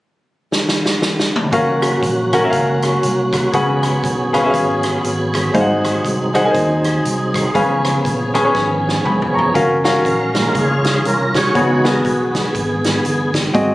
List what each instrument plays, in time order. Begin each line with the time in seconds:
0.52 snare
0.69 snare
0.86 snare
1.02 snare
1.20 snare
1.36 mid tom
1.51 fingered electric bass F#1, tonewheel organ F#3 A#3 C#4 F#4, grand piano C#4 F#4 A#4 F5, kick, closed hi-hat
1.82 cross-stick, closed hi-hat
2.03 fingered electric bass A#1, kick, closed hi-hat
2.33 grand piano C#4 F#4 A#4 F#5, kick, cross-stick, closed hi-hat
2.43 grand piano C#4 F#4 A#4 E5
2.50 fingered electric bass C#2, grand piano F5, kick, closed hi-hat
2.82 cross-stick, closed hi-hat
3.03 fingered electric bass C2, closed hi-hat
3.33 kick, cross-stick, closed hi-hat
3.52 fingered electric bass C#2, grand piano C#3 C#4 G#4 B4 F#5, tonewheel organ F#3 B3 G#4, kick, closed hi-hat
3.83 cross-stick, closed hi-hat
4.04 fingered electric bass B1, kick, closed hi-hat
4.33 grand piano C#4 G#4 B4 F5, kick, cross-stick, closed hi-hat
4.43 grand piano C#4 G#4 B4 E5
4.50 grand piano F5, kick
4.54 fingered electric bass G#1, closed hi-hat
4.83 cross-stick, closed hi-hat
5.04 fingered electric bass G#1, closed hi-hat
5.34 kick, cross-stick, closed hi-hat
5.54 fingered electric bass G#1, grand piano G#2 D#4 G#4 C5 F5, tonewheel organ C4 D#4, kick, closed hi-hat
5.61 grand piano F#5
5.85 cross-stick, closed hi-hat
6.05 fingered electric bass C2, kick, closed hi-hat
6.34 grand piano D#4 G#4 C5 F#5, kick, cross-stick, closed hi-hat
6.44 grand piano D#4 G#4 A#4 G#5
6.51 grand piano C5, kick
6.55 fingered electric bass D#2, closed hi-hat
6.84 cross-stick, closed hi-hat
7.05 fingered electric bass C2, closed hi-hat
7.34 kick, cross-stick, closed hi-hat
7.54 fingered electric bass C#2, grand piano C#3 C#4 G#4 B4 F5, tonewheel organ F3 B3 C#4, kick, closed hi-hat
7.85 cross-stick, closed hi-hat
8.05 fingered electric bass A#1, kick, closed hi-hat
8.34 grand piano C#4 G#4 B4 G#5, kick, cross-stick, closed hi-hat
8.44 grand piano C#4 G#4 B4 C#5
8.55 fingered electric bass G#1, kick, snare
8.89 snare
9.05 fingered electric bass F1, grand piano G#5 B5, mid tom
9.22 floor tom
9.34 grand piano A#5 C#6
9.38 floor tom
9.54 fingered electric bass F#1, grand piano C#4 F#4 A#4 F5, kick, closed hi-hat
9.84 grand piano C#4 F#4 A#4 F5, snare, closed hi-hat
10.05 fingered electric bass A#1, tonewheel organ C#4 A#4 F5, kick, closed hi-hat
10.34 tonewheel organ G#3 A#3 F4, kick, snare, closed hi-hat
10.55 fingered electric bass C#2, tonewheel organ C#4 F4 G#4, kick, closed hi-hat
10.84 tonewheel organ G#4, snare, closed hi-hat
11.05 fingered electric bass C2, tonewheel organ A#4, closed hi-hat
11.35 tonewheel organ F#4 G#4 C#5, kick, snare, closed hi-hat
11.55 fingered electric bass C#2, grand piano C#3 B3 F#4 G#4 C#5, tonewheel organ F#3 B3 D#4, kick, closed hi-hat
11.84 grand piano B3 F#4 G#4 B4, tonewheel organ A#4, snare, closed hi-hat
12.05 fingered electric bass B1, tonewheel organ B3 G#4, kick, closed hi-hat
12.35 kick, snare, closed hi-hat
12.55 fingered electric bass G#1, kick, closed hi-hat
12.84 snare, closed hi-hat
13.05 fingered electric bass G1, closed hi-hat
13.34 kick, snare, closed hi-hat
13.53 fingered electric bass G#1, grand piano G#2 C4 F#4 G#4 D#5, kick, closed hi-hat